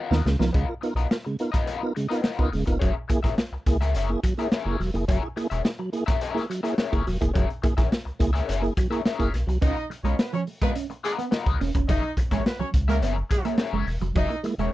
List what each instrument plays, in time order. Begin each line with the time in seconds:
Already playing: clean electric guitar B3 F4 A#4
0.00 clean electric guitar D#5
0.11 analog synth bass D#2, clean electric guitar D#3, tonewheel organ B3 D#4 F4 A#4, snare
0.25 analog synth bass C#2, tonewheel organ C#3 G#3, muted clean electric guitar stroke, snare
0.39 analog synth bass C2, clean electric guitar F3, tonewheel organ B3 D#4 F4 A#4, muted clean electric guitar stroke, snare
0.53 analog synth bass C#2, tonewheel organ C#3 G#3, clean electric guitar B3 F4 A#4 D#5, kick, closed hi-hat
0.69 tonewheel organ F4 A#4
0.81 tonewheel organ B3 D#4 F4 A#4, muted clean electric guitar stroke, closed hi-hat
0.95 analog synth bass B1, clean electric guitar B3 F4 A#4 D#5, closed hi-hat
1.10 tonewheel organ F4 A#4, muted clean electric guitar stroke, snare
1.25 tonewheel organ C#3 G#3, muted clean electric guitar stroke, closed hi-hat
1.39 tonewheel organ B3 D#4 F4 A#4, closed hi-hat
1.52 clean electric guitar B3 F4 A#4 D#5, kick, snare, closed hi-hat
1.66 clean electric guitar B3 F4 A#4 D#5, closed hi-hat
1.83 tonewheel organ B3 D#4 F4 A#4
1.95 tonewheel organ C#3 G#3, muted clean electric guitar stroke, closed hi-hat
2.09 clean electric guitar B3 F4 A#4 D#5, tonewheel organ B3 D#4 F4 A#4, closed hi-hat
2.22 clean electric guitar B3 F4 A#4 D#5, snare
2.38 analog synth bass C#2, tonewheel organ B3 D#4 F4 A#4, kick
2.51 analog synth bass E1, tonewheel organ C#3 G#3, muted clean electric guitar stroke, snare, open hi-hat
2.66 analog synth bass F1, tonewheel organ B3 D#4 F4 A#4, muted clean electric guitar stroke, kick, closed hi-hat
2.79 analog synth bass F#1, tonewheel organ F#3, clean electric guitar C#4 G#4 A#4 E5, kick, closed hi-hat
3.08 tonewheel organ A#3 E4 G#4, muted clean electric guitar stroke, kick, closed hi-hat
3.23 analog synth bass A#1, clean electric guitar C#4 G#4 A#4 E5, tonewheel organ E4 G#4, kick, snare, closed hi-hat
3.38 muted clean electric guitar stroke, snare
3.52 analog synth bass C#2, muted clean electric guitar stroke
3.66 analog synth bass C#2, tonewheel organ A#3 E4 G#4, kick, closed hi-hat
3.81 clean electric guitar C#4 G#4 A#4 E5, snare, closed hi-hat
3.94 analog synth bass F#1, clean electric guitar C#4 G#4 A#4 E5, closed hi-hat
4.09 tonewheel organ A#3 E4 G#4
4.23 tonewheel organ F#3, muted clean electric guitar stroke, kick, closed hi-hat
4.38 tonewheel organ A#3 E4 G#4, clean electric guitar C#4 G#4 A#4 E5, closed hi-hat
4.52 clean electric guitar C#4 G#4 A#4 E5, snare
4.65 analog synth bass F#1, tonewheel organ A#3 E4 G#4
4.80 analog synth bass E1, tonewheel organ F#3, muted clean electric guitar stroke, snare, open hi-hat
4.94 analog synth bass F1, tonewheel organ A#3 E4 G#4, muted clean electric guitar stroke, closed hi-hat
5.08 analog synth bass F#1, tonewheel organ F#3, clean electric guitar C#4 G#4 A#4 E5, kick, closed hi-hat
5.22 tonewheel organ E4 G#4
5.36 tonewheel organ A#3 E4 G#4, muted clean electric guitar stroke, closed hi-hat
5.50 analog synth bass E1, clean electric guitar C#4 G#4 A#4 E5, closed hi-hat
5.64 tonewheel organ E4 G#4, muted clean electric guitar stroke, snare
5.79 tonewheel organ F#3, muted clean electric guitar stroke
5.93 tonewheel organ A#3 E4 G#4, closed hi-hat
6.06 clean electric guitar C#4 G#4 A#4 E5, kick, snare, closed hi-hat
6.21 clean electric guitar C#4 G#4 A#4 E5, closed hi-hat
6.34 tonewheel organ A#3 E4 G#4, snare
6.50 tonewheel organ F#3, muted clean electric guitar stroke, closed hi-hat
6.63 tonewheel organ A#3 E4 G#4, clean electric guitar C#4 G#4 A#4 E5, closed hi-hat
6.78 clean electric guitar C#4 G#4 A#4 E5, snare
6.92 analog synth bass F#1, tonewheel organ A#3 E4 G#4, kick, closed hi-hat
7.07 analog synth bass E1, tonewheel organ F#3, muted clean electric guitar stroke, snare, open hi-hat
7.21 analog synth bass F1, tonewheel organ A#3 E4 G#4, muted clean electric guitar stroke, kick, closed hi-hat
7.34 analog synth bass F#1, tonewheel organ F#3, clean electric guitar C#4 G#4 A#4 E5, kick, closed hi-hat
7.50 closed hi-hat
7.62 tonewheel organ A#3 E4 G#4, muted clean electric guitar stroke, kick, closed hi-hat
7.77 analog synth bass A#1, clean electric guitar C#4 G#4 A#4 E5, tonewheel organ E4 G#4, kick, snare, closed hi-hat
7.91 muted clean electric guitar stroke, snare
8.05 analog synth bass C#2, muted clean electric guitar stroke, closed hi-hat
8.19 analog synth bass C#2, tonewheel organ A#3 E4 G#4, kick, closed hi-hat
8.33 clean electric guitar C#4 G#4 A#4 E5, snare, closed hi-hat
8.47 analog synth bass F#1, clean electric guitar C#4 G#4 A#4 E5, closed hi-hat
8.62 tonewheel organ A#3 E4 G#4, closed hi-hat
8.77 tonewheel organ F#3, muted clean electric guitar stroke, kick, closed hi-hat
8.90 tonewheel organ A#3 E4 G#4, clean electric guitar C#4 G#4 A#4 E5, closed hi-hat
9.05 clean electric guitar C#4 G#4 A#4 E5, snare
9.19 analog synth bass F#1, tonewheel organ A#3 E4 G#4, kick, closed hi-hat
9.33 analog synth bass B1, muted clean electric guitar stroke, snare, closed hi-hat
9.47 analog synth bass C2, tonewheel organ F#3, muted clean electric guitar stroke, closed hi-hat
9.62 analog synth bass C#2, clean electric guitar B3 C#4 F4 A#4 D#5, horn section D#4 D#5, kick, closed hi-hat
9.77 closed hi-hat
9.90 muted clean electric guitar stroke, closed hi-hat
10.04 analog synth bass B1, clean electric guitar G#3 B3 F4 A#4 D#5, horn section C#4 C#5, closed hi-hat
10.19 horn section B3 B4, muted clean electric guitar stroke, snare
10.33 clean electric guitar F3, horn section C#4 C#5, muted clean electric guitar stroke, closed hi-hat
10.47 muted clean electric guitar stroke, open hi-hat
10.61 clean electric guitar G#3 B3 F4 A#4 D#5, horn section B3 B4, kick, snare, closed hi-hat
10.75 clean electric guitar C#4, muted clean electric guitar stroke, closed hi-hat
10.90 muted clean electric guitar stroke, closed hi-hat
11.04 horn section G#3 G#4, clean electric guitar B3 F4 A#4 D#5, closed hi-hat
11.18 clean electric guitar B3, muted clean electric guitar stroke, closed hi-hat
11.31 clean electric guitar B3 F4 A#4 D#5, muted clean electric guitar stroke, snare
11.46 analog synth bass C#2, kick, closed hi-hat
11.60 analog synth bass E1, clean electric guitar C#4, muted clean electric guitar stroke, snare, open hi-hat
11.75 analog synth bass F1, clean electric guitar C#4, muted clean electric guitar stroke, kick, closed hi-hat
11.88 analog synth bass F#1, clean electric guitar F#3 C#4 G#4 A#4 E5, horn section D#4 D#5, kick, closed hi-hat
12.17 muted clean electric guitar stroke, kick, closed hi-hat
12.31 analog synth bass A#1, clean electric guitar G#3 C#4 G#4 A#4 E5, horn section C#4 C#5, kick, snare, closed hi-hat
12.46 horn section B3 B4, muted clean electric guitar stroke, snare
12.59 analog synth bass C#2, clean electric guitar F#3, horn section C#4 C#5, muted clean electric guitar stroke
12.74 analog synth bass C#2, muted clean electric guitar stroke, kick, closed hi-hat
12.88 clean electric guitar G#3 C#4 G#4 A#4 E5, horn section A#3 A#4, snare, closed hi-hat
13.01 analog synth bass F#1, clean electric guitar B3 C#4 G#4 A#4 E5, closed hi-hat
13.18 muted clean electric guitar stroke
13.30 horn section G#3 G#4, muted clean electric guitar stroke, kick, closed hi-hat
13.45 clean electric guitar A#3 C#4 G#4 A#4 E5, closed hi-hat
13.58 clean electric guitar C#4 G#4 A#4 E5, snare
13.73 analog synth bass F#1, clean electric guitar G#3
13.87 analog synth bass E1, muted clean electric guitar stroke, snare, open hi-hat
14.01 analog synth bass F1, clean electric guitar F#3, muted clean electric guitar stroke, closed hi-hat
14.15 analog synth bass F#1, tonewheel organ F#3, clean electric guitar F#3 C#4 G#4 A#4 E5, horn section D#4 D#5, kick, closed hi-hat
14.30 tonewheel organ A#3 E4, closed hi-hat
14.43 tonewheel organ G#3 A#3 E4, muted clean electric guitar stroke, closed hi-hat
14.58 analog synth bass E1, clean electric guitar G#3 C#4 G#4 A#4 E5, horn section C#4 C#5, closed hi-hat